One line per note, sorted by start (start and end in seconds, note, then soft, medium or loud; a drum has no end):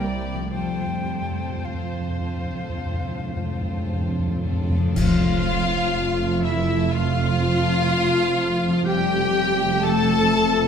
0.00 0.39 C2 medium
0.00 0.48 C3 soft
0.00 0.50 G3 soft
0.00 0.51 G3 medium
0.00 0.50 A#3 soft
0.00 0.42 C4 soft
0.00 0.51 C4 soft
0.00 0.51 E4 soft
0.00 0.54 E4 soft
0.00 0.51 G4 soft
0.00 0.53 D5 medium
0.00 0.52 G5 medium
0.34 4.24 F3 soft
0.38 4.28 A3 soft
0.43 4.33 C4 soft
0.47 4.37 F4 soft
0.52 1.52 F2 soft
0.52 0.60 F2 soft
0.52 1.64 G3 medium
0.52 1.07 C4 soft
0.52 1.07 F4 soft
0.52 1.08 A4 soft
0.52 4.43 C5 soft
0.52 1.66 G5 medium
0.62 0.69 F2 soft
0.70 0.77 F2 soft
0.79 0.86 F2 soft
0.87 0.94 F2 soft
0.95 1.03 F2 soft
1.04 1.11 F2 soft
1.04 2.20 C4 soft
1.08 2.20 F4 soft
1.08 2.21 A4 soft
1.13 1.21 F2 soft
1.22 1.29 F2 soft
1.31 1.38 F2 soft
1.39 1.47 F2 soft
1.48 1.56 F2 soft
1.57 1.65 F2 soft
1.65 2.65 F2 soft
1.65 1.73 F2 soft
1.65 4.43 F3 soft
1.65 4.43 F5 soft
1.74 1.82 F2 soft
1.83 1.91 F2 soft
1.92 1.99 F2 soft
2.01 2.08 F2 soft
2.10 2.17 F2 soft
2.19 2.26 F2 soft
2.19 3.30 C4 soft
2.19 3.31 F4 soft
2.19 3.31 A4 soft
2.27 2.34 F2 soft
2.36 2.43 F2 soft
2.44 2.52 F2 soft
2.53 2.60 F2 soft
2.61 2.68 F2 soft
2.69 2.77 F2 soft
2.78 2.85 F2 soft
2.78 3.74 F2 soft
2.86 2.93 F2 medium
2.94 3.01 F2 medium
3.03 3.09 F2 medium
3.11 3.18 F2 medium
3.19 3.26 F2 medium
3.28 3.35 F2 medium
3.32 3.43 F2 medium
3.32 4.41 C4 soft
3.32 4.41 F4 soft
3.32 4.42 A4 soft
3.44 3.51 F2 medium
3.53 3.60 F2 medium
3.61 3.67 F2 medium
3.69 3.76 F2 medium
3.77 3.83 F2 medium
3.85 3.92 F2 medium
3.85 4.85 F2 soft
3.93 4.00 F2 medium
4.01 4.08 F2 medium
4.09 4.17 F2 medium
4.19 4.26 F2 medium
4.27 4.34 F2 medium
4.36 4.43 F2 medium
4.43 4.51 F2 medium
4.43 4.96 C4 soft
4.43 4.95 F4 soft
4.43 4.96 A4 soft
4.52 4.60 F2 medium
4.61 4.68 F2 medium
4.69 4.77 F2 medium
4.78 4.85 F2 medium
4.78 8.67 F3 medium
4.83 4.93 F2 medium
4.83 8.73 A3 soft
4.87 8.71 C4 soft
4.92 8.80 A4 soft
4.96 8.82 F1 medium
4.96 8.82 F2 medium
4.96 8.82 F3 medium
4.96 6.42 F3 medium
4.96 8.83 A3 medium
4.96 6.47 F4 medium
4.96 6.41 F4 medium
4.96 6.46 F5 medium
4.96 6.41 F5 medium
4.96 concert bass drum medium
4.96 crash medium
6.45 6.93 E3 medium
6.45 6.93 E4 medium
6.45 6.91 E4 medium
6.45 6.93 E4 medium
6.45 6.94 E5 medium
6.45 6.93 E5 medium
6.92 8.82 F3 medium
6.92 8.82 F4 medium
6.92 8.86 F4 medium
6.92 8.85 F5 medium
6.92 8.87 F5 medium
6.92 8.86 F5 loud
8.68 10.68 F3 medium
8.73 10.68 C4 medium
8.77 10.68 F4 medium
8.82 10.68 F2 medium
8.82 9.81 G3 medium
8.82 9.85 G4 medium
8.82 10.68 A4 medium
8.82 9.84 G5 medium
8.82 9.85 G5 medium
8.86 10.68 F1 medium
8.86 10.68 F3 medium
8.86 10.68 A3 medium
8.86 9.82 G4 medium
8.86 9.82 G5 loud
9.83 10.68 A3 loud
9.83 10.68 A4 loud
9.83 10.68 A4 medium
9.83 10.68 A5 medium
9.83 10.68 A5 loud
9.83 10.68 A5 medium